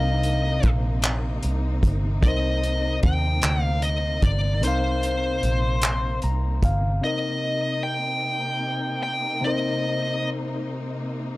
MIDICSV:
0, 0, Header, 1, 6, 480
1, 0, Start_track
1, 0, Key_signature, -3, "minor"
1, 0, Tempo, 800000
1, 1336, Time_signature, 6, 3, 24, 8
1, 6823, End_track
2, 0, Start_track
2, 0, Title_t, "Lead electric guitar"
2, 0, Program_c, 0, 29
2, 0, Note_on_c, 0, 75, 82
2, 416, Note_off_c, 0, 75, 0
2, 1337, Note_on_c, 0, 75, 97
2, 1793, Note_off_c, 0, 75, 0
2, 1821, Note_on_c, 0, 79, 115
2, 2181, Note_off_c, 0, 79, 0
2, 2181, Note_on_c, 0, 77, 115
2, 2296, Note_on_c, 0, 75, 94
2, 2313, Note_off_c, 0, 77, 0
2, 2519, Note_off_c, 0, 75, 0
2, 2540, Note_on_c, 0, 74, 95
2, 2782, Note_off_c, 0, 74, 0
2, 2785, Note_on_c, 0, 72, 82
2, 3716, Note_off_c, 0, 72, 0
2, 4223, Note_on_c, 0, 75, 97
2, 4700, Note_on_c, 0, 79, 117
2, 4714, Note_off_c, 0, 75, 0
2, 5411, Note_off_c, 0, 79, 0
2, 5419, Note_on_c, 0, 79, 102
2, 5664, Note_off_c, 0, 79, 0
2, 5666, Note_on_c, 0, 75, 85
2, 6177, Note_off_c, 0, 75, 0
2, 6823, End_track
3, 0, Start_track
3, 0, Title_t, "Reed electric piano"
3, 0, Program_c, 1, 4
3, 0, Control_c, 1, 64, 127
3, 0, Note_on_c, 1, 48, 68
3, 0, Note_on_c, 1, 60, 61
3, 0, Note_on_c, 1, 62, 45
3, 0, Note_on_c, 1, 63, 58
3, 0, Note_on_c, 1, 70, 60
3, 0, Note_on_c, 1, 77, 71
3, 1308, Note_off_c, 1, 48, 0
3, 1312, Note_off_c, 1, 60, 0
3, 1322, Note_off_c, 1, 70, 0
3, 1326, Note_off_c, 1, 77, 0
3, 1326, Note_on_c, 1, 48, 68
3, 1336, Note_on_c, 1, 60, 62
3, 1337, Note_off_c, 1, 63, 0
3, 1346, Note_on_c, 1, 63, 65
3, 1355, Note_on_c, 1, 70, 63
3, 1364, Note_on_c, 1, 72, 78
3, 2747, Note_off_c, 1, 48, 0
3, 2752, Note_off_c, 1, 60, 0
3, 2757, Note_off_c, 1, 63, 0
3, 2762, Note_off_c, 1, 70, 0
3, 2766, Note_off_c, 1, 72, 0
3, 2767, Note_on_c, 1, 48, 70
3, 2776, Note_on_c, 1, 60, 68
3, 2785, Note_on_c, 1, 63, 65
3, 2795, Note_on_c, 1, 70, 63
3, 2805, Note_on_c, 1, 77, 72
3, 3742, Note_on_c, 1, 82, 74
3, 3962, Note_off_c, 1, 82, 0
3, 3978, Note_off_c, 1, 77, 0
3, 3985, Note_on_c, 1, 77, 64
3, 4188, Note_off_c, 1, 48, 0
3, 4192, Note_off_c, 1, 60, 0
3, 4196, Note_off_c, 1, 63, 0
3, 4201, Note_off_c, 1, 70, 0
3, 4204, Note_off_c, 1, 77, 0
3, 4206, Note_on_c, 1, 48, 62
3, 4212, Note_on_c, 1, 60, 58
3, 4224, Control_c, 1, 64, 0
3, 4224, Note_on_c, 1, 63, 64
3, 4231, Note_off_c, 1, 62, 0
3, 4233, Note_on_c, 1, 70, 65
3, 4243, Note_on_c, 1, 75, 72
3, 4340, Control_c, 1, 64, 127
3, 5627, Note_off_c, 1, 48, 0
3, 5630, Note_off_c, 1, 60, 0
3, 5636, Note_off_c, 1, 63, 0
3, 5640, Note_off_c, 1, 70, 0
3, 5645, Note_off_c, 1, 75, 0
3, 5649, Note_on_c, 1, 48, 70
3, 5659, Note_on_c, 1, 60, 66
3, 5669, Note_on_c, 1, 63, 66
3, 5681, Note_on_c, 1, 70, 67
3, 5686, Note_on_c, 1, 72, 78
3, 6823, Note_off_c, 1, 48, 0
3, 6823, Note_off_c, 1, 60, 0
3, 6823, Note_off_c, 1, 63, 0
3, 6823, Note_off_c, 1, 70, 0
3, 6823, Note_off_c, 1, 72, 0
3, 6823, End_track
4, 0, Start_track
4, 0, Title_t, "String section"
4, 0, Program_c, 2, 48
4, 0, Note_on_c, 2, 48, 71
4, 0, Note_on_c, 2, 58, 68
4, 0, Note_on_c, 2, 60, 72
4, 0, Note_on_c, 2, 63, 85
4, 4195, Note_off_c, 2, 58, 0
4, 4195, Note_off_c, 2, 60, 0
4, 4195, Note_off_c, 2, 63, 0
4, 4196, Note_off_c, 2, 48, 0
4, 4214, Note_on_c, 2, 60, 71
4, 4216, Note_on_c, 2, 58, 72
4, 4216, Note_on_c, 2, 63, 90
4, 4218, Note_on_c, 2, 48, 82
4, 6823, Note_off_c, 2, 48, 0
4, 6823, Note_off_c, 2, 58, 0
4, 6823, Note_off_c, 2, 60, 0
4, 6823, Note_off_c, 2, 63, 0
4, 6823, End_track
5, 0, Start_track
5, 0, Title_t, "Fingered electric bass"
5, 0, Program_c, 3, 33
5, 0, Note_on_c, 3, 36, 101
5, 356, Note_off_c, 3, 36, 0
5, 384, Note_on_c, 3, 34, 97
5, 836, Note_off_c, 3, 34, 0
5, 866, Note_on_c, 3, 36, 92
5, 1078, Note_off_c, 3, 36, 0
5, 1099, Note_on_c, 3, 31, 100
5, 1314, Note_off_c, 3, 31, 0
5, 1340, Note_on_c, 3, 36, 115
5, 1794, Note_off_c, 3, 36, 0
5, 1824, Note_on_c, 3, 39, 102
5, 2037, Note_off_c, 3, 39, 0
5, 2059, Note_on_c, 3, 38, 105
5, 2514, Note_off_c, 3, 38, 0
5, 2539, Note_on_c, 3, 31, 103
5, 2782, Note_off_c, 3, 31, 0
5, 2782, Note_on_c, 3, 36, 108
5, 3235, Note_off_c, 3, 36, 0
5, 3261, Note_on_c, 3, 34, 89
5, 3714, Note_off_c, 3, 34, 0
5, 3743, Note_on_c, 3, 36, 89
5, 3956, Note_off_c, 3, 36, 0
5, 3980, Note_on_c, 3, 31, 93
5, 4194, Note_off_c, 3, 31, 0
5, 6823, End_track
6, 0, Start_track
6, 0, Title_t, "Drums"
6, 141, Note_on_c, 9, 42, 52
6, 201, Note_off_c, 9, 42, 0
6, 378, Note_on_c, 9, 42, 51
6, 382, Note_on_c, 9, 36, 90
6, 438, Note_off_c, 9, 42, 0
6, 442, Note_off_c, 9, 36, 0
6, 613, Note_on_c, 9, 42, 70
6, 625, Note_on_c, 9, 39, 118
6, 673, Note_off_c, 9, 42, 0
6, 685, Note_off_c, 9, 39, 0
6, 856, Note_on_c, 9, 42, 52
6, 916, Note_off_c, 9, 42, 0
6, 1097, Note_on_c, 9, 36, 86
6, 1098, Note_on_c, 9, 42, 52
6, 1157, Note_off_c, 9, 36, 0
6, 1158, Note_off_c, 9, 42, 0
6, 1336, Note_on_c, 9, 36, 108
6, 1337, Note_on_c, 9, 42, 70
6, 1396, Note_off_c, 9, 36, 0
6, 1397, Note_off_c, 9, 42, 0
6, 1581, Note_on_c, 9, 42, 52
6, 1641, Note_off_c, 9, 42, 0
6, 1817, Note_on_c, 9, 42, 49
6, 1820, Note_on_c, 9, 36, 95
6, 1877, Note_off_c, 9, 42, 0
6, 1880, Note_off_c, 9, 36, 0
6, 2050, Note_on_c, 9, 42, 70
6, 2062, Note_on_c, 9, 39, 118
6, 2110, Note_off_c, 9, 42, 0
6, 2122, Note_off_c, 9, 39, 0
6, 2293, Note_on_c, 9, 42, 48
6, 2353, Note_off_c, 9, 42, 0
6, 2534, Note_on_c, 9, 42, 50
6, 2535, Note_on_c, 9, 36, 83
6, 2594, Note_off_c, 9, 42, 0
6, 2595, Note_off_c, 9, 36, 0
6, 2778, Note_on_c, 9, 42, 68
6, 2838, Note_off_c, 9, 42, 0
6, 3019, Note_on_c, 9, 42, 54
6, 3079, Note_off_c, 9, 42, 0
6, 3258, Note_on_c, 9, 42, 47
6, 3318, Note_off_c, 9, 42, 0
6, 3490, Note_on_c, 9, 42, 69
6, 3501, Note_on_c, 9, 39, 119
6, 3550, Note_off_c, 9, 42, 0
6, 3561, Note_off_c, 9, 39, 0
6, 3732, Note_on_c, 9, 42, 46
6, 3792, Note_off_c, 9, 42, 0
6, 3975, Note_on_c, 9, 36, 76
6, 3976, Note_on_c, 9, 42, 51
6, 4035, Note_off_c, 9, 36, 0
6, 4036, Note_off_c, 9, 42, 0
6, 6823, End_track
0, 0, End_of_file